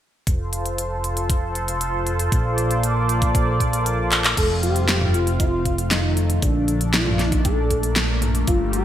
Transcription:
0.27 2.30 F1 medium
0.27 4.33 F4 medium
0.27 4.33 A4 medium
0.27 4.33 C5 medium
0.27 kick loud
0.27 closed hi-hat medium
0.53 closed hi-hat medium
0.66 closed hi-hat medium
0.78 closed hi-hat medium
1.04 closed hi-hat medium
1.17 closed hi-hat medium
1.30 kick loud
1.30 closed hi-hat medium
1.55 closed hi-hat medium
1.68 closed hi-hat medium
1.81 closed hi-hat medium
2.07 closed hi-hat medium
2.19 closed hi-hat medium
2.32 4.35 A#1 medium
2.32 4.35 A#3 medium
2.32 4.35 D5 medium
2.32 kick loud
2.32 closed hi-hat medium
2.58 closed hi-hat medium
2.71 closed hi-hat medium
2.83 closed hi-hat medium
3.09 closed hi-hat medium
3.22 kick loud
3.22 closed hi-hat medium
3.35 kick loud
3.35 closed hi-hat medium
3.60 kick medium
3.60 closed hi-hat medium
3.73 closed hi-hat medium
3.86 closed hi-hat medium
4.12 clap medium
4.12 closed hi-hat medium
4.24 clap medium
4.24 closed hi-hat medium
4.37 6.40 F1 medium
4.37 8.85 A3 medium
4.37 6.40 C4 medium
4.37 6.40 F4 medium
4.37 4.61 A4 loud
4.37 kick loud
4.37 closed hi-hat medium
4.37 crash medium
4.63 5.16 G4 loud
4.63 closed hi-hat medium
4.76 closed hi-hat medium
4.89 snare loud
4.89 closed hi-hat medium
5.01 mid tom medium
5.14 5.39 F4 loud
5.14 closed hi-hat medium
5.27 closed hi-hat medium
5.40 5.88 F4 loud
5.40 kick loud
5.40 closed hi-hat medium
5.65 kick medium
5.65 closed hi-hat medium
5.78 closed hi-hat medium
5.91 6.44 D#4 medium
5.91 snare loud
5.91 closed hi-hat medium
6.17 closed hi-hat medium
6.30 closed hi-hat medium
6.42 8.45 A#1 medium
6.42 8.85 A#3 medium
6.42 8.45 D4 medium
6.42 6.93 D4 loud
6.42 kick loud
6.42 closed hi-hat medium
6.68 closed hi-hat medium
6.81 closed hi-hat medium
6.94 7.41 F4 loud
6.94 snare loud
6.94 closed hi-hat medium
7.06 mid tom medium
7.19 snare soft
7.19 closed hi-hat medium
7.32 kick loud
7.32 closed hi-hat medium
7.45 8.18 A4 medium
7.45 kick loud
7.45 closed hi-hat medium
7.71 kick medium
7.71 closed hi-hat medium
7.83 closed hi-hat medium
7.96 snare loud
7.96 closed hi-hat medium
8.22 closed hi-hat medium
8.22 mid tom medium
8.35 closed hi-hat medium
8.47 8.85 G1 medium
8.47 8.85 G3 medium
8.47 8.71 F4 loud
8.47 kick loud
8.47 closed hi-hat medium
8.73 8.85 G4 loud
8.73 closed hi-hat medium

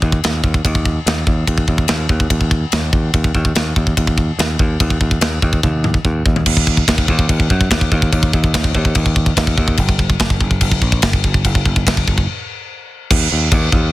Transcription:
0.02 0.19 D#2 medium
0.02 kick medium
0.12 kick medium
0.24 0.40 D#2 medium
0.24 snare loud
0.24 ride bell medium
0.44 0.60 D#2 medium
0.44 kick medium
0.54 kick medium
0.65 0.98 D#2 medium
0.65 kick loud
0.65 ride bell medium
0.75 kick medium
0.85 kick medium
1.06 1.23 D#2 medium
1.06 snare loud
1.06 ride bell medium
1.27 1.43 D#2 medium
1.27 kick medium
1.47 1.64 D#2 medium
1.47 kick loud
1.47 ride bell medium
1.58 kick medium
1.68 1.85 D#2 medium
1.68 kick medium
1.78 kick medium
1.88 2.06 D#2 medium
1.88 snare loud
1.88 ride bell medium
2.09 2.26 D#2 medium
2.09 kick medium
2.20 kick medium
2.30 2.64 D#2 medium
2.30 kick loud
2.30 ride bell medium
2.41 kick medium
2.51 kick medium
2.72 2.89 D#2 medium
2.72 snare loud
2.72 ride bell medium
2.93 3.09 D#2 medium
2.93 kick medium
3.14 3.31 D#2 loud
3.14 kick loud
3.14 ride bell medium
3.24 kick medium
3.35 3.51 D#2 medium
3.35 kick medium
3.45 kick medium
3.55 3.72 D#2 medium
3.55 snare loud
3.55 ride bell medium
3.76 3.93 D#2 medium
3.76 kick medium
3.87 kick medium
3.97 4.30 D#2 medium
3.97 kick loud
3.97 ride bell medium
4.07 kick medium
4.18 kick medium
4.39 4.55 D#2 medium
4.39 snare loud
4.39 ride bell medium
4.59 4.76 D#2 medium
4.59 kick medium
4.80 4.97 D#2 loud
4.80 kick loud
4.80 ride bell medium
4.90 kick medium
5.01 5.18 D#2 medium
5.01 kick medium
5.11 kick medium
5.21 5.38 D#2 medium
5.21 snare loud
5.21 ride bell medium
5.42 5.59 D#2 medium
5.42 kick medium
5.53 kick medium
5.63 5.97 D#2 medium
5.63 kick loud
5.63 high tom medium
5.84 mid tom medium
5.94 kick medium
6.05 6.22 D#2 medium
6.05 kick medium
6.26 6.42 D#2 medium
6.26 kick medium
6.36 floor tom medium
6.46 6.83 D#2 loud
6.46 kick medium
6.46 crash loud
6.46 crash medium
6.57 kick medium
6.67 kick medium
6.77 kick medium
6.88 7.06 D#2 loud
6.88 kick medium
6.88 snare loud
6.88 crash medium
6.98 kick medium
7.08 7.27 D#2 loud
7.08 kick medium
7.19 kick medium
7.29 7.47 D#2 medium
7.29 kick loud
7.29 crash medium
7.40 kick medium
7.50 7.69 F#2 medium
7.50 kick medium
7.61 kick medium
7.70 7.89 D#2 medium
7.70 kick medium
7.70 snare loud
7.70 crash medium
7.81 kick medium
7.92 8.10 D#2 medium
7.92 kick medium
8.02 kick medium
8.12 8.31 D#2 medium
8.12 kick medium
8.12 crash medium
8.23 kick medium
8.33 8.52 D#2 medium
8.33 kick medium
8.44 kick medium
8.54 8.72 D#2 medium
8.54 kick medium
8.54 snare loud
8.54 crash medium
8.64 kick medium
8.75 8.93 D#2 medium
8.75 kick medium
8.85 kick medium
8.95 9.32 D#2 loud
8.95 kick loud
8.95 crash medium
9.06 kick medium
9.16 kick medium
9.26 kick medium
9.37 9.55 D#2 medium
9.37 kick medium
9.37 snare loud
9.37 crash medium
9.47 kick medium
9.57 9.76 D#2 medium
9.57 kick medium
9.68 kick medium
9.77 10.15 F#1 loud
9.77 kick medium
9.77 crash medium
9.89 kick medium
9.99 kick medium
10.10 kick medium
10.20 10.38 F#1 loud
10.20 kick medium
10.20 snare loud
10.20 crash medium
10.30 kick loud
10.41 10.59 F#1 medium
10.41 kick medium
10.51 kick medium
10.61 10.80 F#1 loud
10.61 kick medium
10.61 crash medium
10.71 kick medium
10.82 11.00 A#1 loud
10.82 kick loud
10.92 kick medium
11.02 11.21 F#1 loud
11.02 kick medium
11.02 snare loud
11.02 crash medium
11.13 kick medium
11.24 11.42 F#1 medium
11.24 kick medium
11.34 kick medium
11.45 11.63 F#1 medium
11.45 kick medium
11.45 crash medium
11.55 kick medium
11.65 11.84 F#1 medium
11.65 kick medium
11.76 kick medium
11.87 12.05 F#1 loud
11.87 kick loud
11.87 snare loud
11.87 crash medium
11.97 kick medium
12.08 12.26 F#1 loud
12.08 kick medium
12.18 kick medium
13.11 13.27 D#2 loud
13.11 kick loud
13.11 crash loud
13.11 crash medium
13.32 13.48 D#2 medium
13.52 13.68 D#2 loud
13.52 kick medium
13.52 crash medium
13.72 13.89 D#2 medium
13.72 kick medium

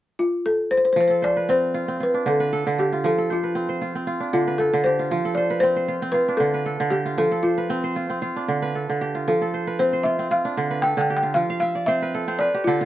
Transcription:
0.19 0.46 F4 medium
0.46 0.72 A4 medium
0.71 0.76 C5 medium
0.77 0.84 C5 medium
0.85 0.92 C5 medium
0.93 2.05 F3 medium
0.93 0.99 C5 medium
1.01 1.07 C5 medium
1.08 2.42 A4 medium
1.08 1.16 C5 medium
1.22 2.46 C5 medium
1.22 1.35 D5 medium
1.37 1.94 B4 medium
1.49 1.88 C4 medium
1.49 2.02 C5 medium
1.74 2.00 F4 medium
1.88 2.46 C4 medium
2.00 2.92 F4 medium
2.00 2.28 B4 medium
2.14 3.82 D4 medium
2.26 2.65 D3 medium
2.26 2.80 A4 medium
2.40 3.36 B4 medium
2.53 3.18 A4 medium
2.67 3.09 D3 medium
2.79 4.20 G4 medium
2.79 3.03 G4 medium
2.93 3.81 F4 medium
3.04 4.12 F3 medium
3.04 3.31 A4 medium
3.18 4.50 A4 medium
3.30 3.79 F4 medium
3.30 3.69 C5 medium
3.44 4.01 B4 medium
3.55 3.95 C4 medium
3.69 4.53 C5 medium
3.82 4.07 F4 medium
3.95 4.53 C4 medium
4.07 4.99 F4 medium
4.20 5.88 D4 medium
4.33 4.72 D3 medium
4.33 4.60 F4 medium
4.47 5.43 B4 medium
4.58 4.85 A4 medium
4.58 5.25 A4 medium
4.73 5.16 D3 medium
4.84 6.27 G4 medium
4.84 5.38 C5 medium
4.99 5.88 F4 medium
5.11 6.20 F3 medium
5.25 6.57 A4 medium
5.35 5.76 C5 medium
5.35 5.47 D5 medium
5.50 6.08 B4 medium
5.60 6.02 C4 medium
5.60 6.15 C5 loud
5.76 6.60 C5 medium
5.88 6.14 F4 medium
6.02 6.60 C4 medium
6.12 7.05 F4 medium
6.12 6.40 B4 medium
6.28 7.96 D4 medium
6.37 6.79 D3 medium
6.37 6.93 A4 medium
6.54 7.50 B4 medium
6.66 7.31 A4 medium
6.80 7.24 D3 medium
6.90 7.16 G4 medium
6.90 8.33 G4 medium
7.06 7.96 F4 medium
7.18 8.28 F3 medium
7.18 7.45 A4 medium
7.32 8.63 A4 medium
7.43 7.92 F4 medium
7.43 7.83 C5 medium
7.58 8.16 B4 medium
7.70 8.09 C4 medium
7.84 8.68 C5 medium
7.96 8.21 F4 medium
8.10 8.68 C4 medium
8.22 9.14 F4 medium
8.36 10.04 D4 medium
8.48 8.88 D3 medium
8.62 9.60 B4 medium
8.75 9.41 A4 medium
8.90 9.32 D3 medium
9.01 10.42 G4 medium
9.15 10.05 F4 medium
9.28 10.36 F3 medium
9.28 9.81 A4 medium
9.42 10.73 A4 medium
9.54 9.93 C5 medium
9.67 10.25 B4 medium
9.79 10.19 C4 medium
9.79 10.06 C5 medium
9.93 10.77 C5 medium
10.03 10.30 F4 medium
10.03 10.31 E5 medium
10.19 10.77 C4 medium
10.31 11.23 F4 medium
10.31 10.85 F5 medium
10.45 12.13 D4 medium
10.57 10.96 D3 medium
10.71 11.94 B4 medium
10.82 12.14 A4 medium
10.82 11.00 G5 loud
10.97 11.41 D3 medium
10.97 11.15 G5 medium
11.10 12.51 G4 medium
11.17 11.35 G5 medium
11.23 11.68 F4 medium
11.34 12.45 F3 medium
11.34 11.59 F5 loud
11.50 12.50 F5 medium
11.60 12.65 E5 medium
11.60 11.88 F5 medium
11.75 12.85 D5 medium
11.86 12.27 C4 medium
11.86 12.28 C5 medium
11.86 12.41 E5 medium
12.02 12.34 B4 medium
12.15 12.67 A4 medium
12.28 12.46 C4 medium
12.28 12.85 C5 medium
12.39 12.85 B4 medium
12.39 12.64 D5 medium
12.54 12.85 G4 medium
12.64 12.85 D3 medium
12.64 12.85 F4 medium
12.64 12.85 A4 medium
12.81 12.85 F4 medium

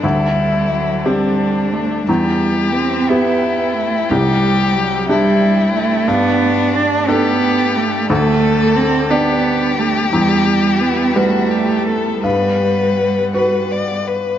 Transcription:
0.00 2.04 D2 soft
0.00 0.72 G3 medium
0.00 2.07 C4 soft
0.00 1.07 E4 medium
0.00 2.03 A4 soft
0.00 2.03 D5 soft
0.71 1.07 F#3 medium
1.05 1.74 G3 medium
1.05 2.03 C4 soft
1.05 2.09 D4 soft
1.05 2.04 G4 soft
1.72 2.05 A3 medium
2.06 4.06 E2 medium
2.06 2.76 G3 medium
2.06 3.11 G4 medium
2.06 4.10 B4 soft
2.06 4.09 E5 soft
2.06 8.10 G5 soft
2.74 3.10 C4 medium
3.09 3.76 B3 medium
3.09 4.06 B3 soft
3.09 4.11 E4 medium
3.09 4.06 G4 soft
3.75 4.10 A3 medium
4.09 6.05 C2 medium
4.09 4.76 G3 medium
4.09 6.08 C4 soft
4.09 5.08 G4 medium
4.09 10.13 D5 soft
4.74 5.09 F#3 medium
5.08 5.73 G3 medium
5.08 6.04 D4 soft
5.08 6.10 E4 medium
5.08 6.05 G4 soft
5.74 6.10 A3 medium
6.08 8.06 G2 medium
6.08 8.10 A3 medium
6.08 6.77 B3 medium
6.08 7.10 D4 medium
6.75 7.09 D4 medium
7.08 7.78 B3 medium
7.08 8.06 D4 medium
7.08 8.09 G4 medium
7.08 8.06 A4 medium
7.76 8.09 A3 medium
8.10 10.09 D2 medium
8.10 14.38 G3 medium
8.10 8.77 A3 medium
8.10 10.14 D4 medium
8.10 9.12 A4 medium
8.76 9.11 C4 loud
9.10 9.80 B3 medium
9.10 10.09 D4 soft
9.10 11.18 G4 medium
9.10 10.09 D5 soft
9.78 10.11 A3 medium
10.12 12.20 E2 medium
10.12 10.82 G3 medium
10.12 14.38 B3 medium
10.12 12.24 E5 soft
10.81 11.17 B3 medium
11.16 12.20 G3 soft
11.16 12.23 A3 medium
11.16 11.52 F#4 medium
11.16 12.21 B4 soft
11.51 11.86 G4 soft
11.87 12.23 A4 medium
12.23 14.38 G2 soft
12.23 14.03 G3 medium
12.23 13.25 B4 medium
12.23 14.38 F#5 soft
13.34 14.38 F#4 soft
13.34 14.38 B4 soft
13.34 13.73 B4 soft
13.71 14.09 D5 medium
14.07 14.38 B4 soft

